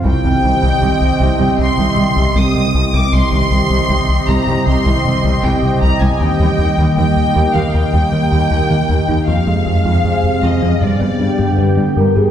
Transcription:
<<
  \new Staff \with { instrumentName = "Violin section" } { \time 4/4 \key c \minor \tempo 4 = 78 g''2 c'''4 ees'''8. d'''16 | c'''4. bes''8 c'''4 g''8 bes''16 aes''16 | g''4 g''8. f''16 g''2 | f''4. ees''8 d''4 r4 | }
  \new Staff \with { instrumentName = "French horn section" } { \time 4/4 \key c \minor r1 | r1 | r1 | r2. r8 bes'16 aes'16 | }
  \new Staff \with { instrumentName = "Analog synth pad" } { \time 4/4 \key c \minor << { <g' ees''>1 | <g' ees''>1~ | <g' ees''>1 | <aes' f''>2 <g' g''>2 | } \\ { <c c'>1 | <c c'>1 | <ees bes>1 | <c c'>2 <d b>2 | } >> }
  \new Staff \with { instrumentName = "Synth pluck" } { \clef bass \time 4/4 \key c \minor c16 ees16 ees16 c16 ees16 r16 c16 g16 c16 ees16 g16 c16 c'16 g16 c16 c'16 | c16 ees16 ees16 c16 ees16 r16 c16 g16 c16 ees16 g16 c16 c'16 g16 c16 c'16 | ees16 g16 g16 ees16 g16 r16 ees16 bes16 ees16 g16 bes16 ees16 ees'16 bes16 ees16 ees'16 | f16 aes16 aes16 f16 aes16 r16 f16 c'16 g16 b16 d'16 g16 g'16 d'16 g16 g'16 | }
  \new Staff \with { instrumentName = "Analog synth bass" } { \clef bass \time 4/4 \key c \minor c,16 c,16 c,16 c,16 c,16 c,16 c,16 c16 c,16 c,16 c16 c,16 c,16 c16 c,16 c,16 | c,16 c,16 c,16 c,16 c,16 c,16 c,16 c16 c,16 c,16 c16 c,16 c,16 c16 c,16 c,16 | ees,16 ees,16 ees,16 ees,16 ees,16 ees,16 ees,16 ees16 ees,16 ees,16 ees16 ees,16 ees,16 ees16 ees,16 ees,16 | f,16 f,16 f,16 f,16 f,16 f,16 f,16 f16 g,16 g,16 g16 g,16 g,16 g16 g,16 g,16 | }
  \new Staff \with { instrumentName = "Cello section" } { \clef bass \time 4/4 \key c \minor c,16 c,16 c,16 c,16 c,16 r16 c,16 c,16 c,16 c,16 c,16 c,16 c,16 c,16 c,16 c,16 | c,16 c,16 c,16 c,16 c,16 r16 c,16 c,16 c,16 c,16 c,16 c,16 c,16 c,16 c,16 c,16 | ees,16 ees,16 ees,16 ees,16 ees,16 r16 ees,16 ees,16 ees,16 ees,16 ees,16 ees,16 ees,16 ees,16 ees,16 ees,16 | f,16 f,16 f,16 f,16 f,16 r16 f,16 f,16 g,16 g,16 g,16 g,16 g,16 g,16 g,16 g,16 | }
>>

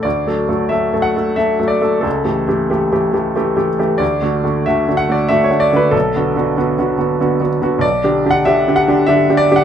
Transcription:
<<
  \new Staff \with { instrumentName = "Grand piano" } { \time 3/4 \key d \major \tempo 4 = 93 d''4 e''8 fis''8 e''8 d''8 | a'2~ a'8 r8 | d''4 e''8 fis''16 d''16 e''16 cis''16 d''16 b'16 | a'2~ a'8 r8 |
\key g \major d''8. fis''16 e''8 fis''8 e''8 d''16 fis''16 | }
  \new Staff \with { instrumentName = "Grand piano" } { \time 3/4 \key d \major \tuplet 3/2 { d,8 <fis a a'>8 <fis a a'>8 <fis a a'>8 <fis a a'>8 <fis a a'>8 <fis a a'>8 <fis a a'>8 <fis a a'>8 } | \tuplet 3/2 { cis,8 <e a g'>8 <e a g'>8 <e a g'>8 <e a g'>8 <e a g'>8 <e a g'>8 <e a g'>8 <e a g'>8 } | \tuplet 3/2 { d,8 <d a fis'>8 <d a fis'>8 <d a fis'>8 <d a fis'>8 <d a fis'>8 <d a fis'>8 <d a fis'>8 <d a fis'>8 } | \tuplet 3/2 { b,,8 <d b fis'>8 <d b fis'>8 <d b fis'>8 <d b fis'>8 <d b fis'>8 <d b fis'>8 <d b fis'>8 <d b fis'>8 } |
\key g \major \tuplet 3/2 { b,,8 <d d' g'>8 <d d' g'>8 <d d' g'>8 <d d' g'>8 <d d' g'>8 <d d' g'>8 <d d' g'>8 <d d' g'>8 } | }
>>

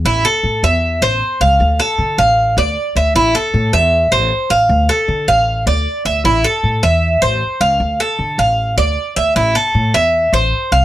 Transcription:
<<
  \new Staff \with { instrumentName = "Cuban tres" } { \time 4/4 \key a \minor \tempo 4 = 155 e'8 a'4 e''4 c''4 f''8~ | f''8 a'4 f''4 d''4 e''8 | e'8 a'4 e''4 c''4 f''8~ | f''8 a'4 f''4 d''4 e''8 |
e'8 a'4 e''4 c''4 f''8~ | f''8 a'4 f''4 d''4 e''8 | e'8 a'4 e''4 c''4 f''8 | }
  \new Staff \with { instrumentName = "Upright bass" } { \clef bass \time 4/4 \key a \minor a,,8 r8 a,8 e,4 a,,8 r8 cis,8 | d,8 r8 d8 a,,4 d,8 r8 d,8 | a,,8 r8 a,8 e,4 a,,8 r8 a,,8 | d,8 r8 d8 a,,4 d,8 r8 d,8 |
a,,8 r8 a,8 e,4 a,,8 r8 cis,8 | d,8 r8 d8 a,,4 d,8 r8 d,8 | a,,8 r8 a,8 e,4 a,,8 r8 c,8 | }
>>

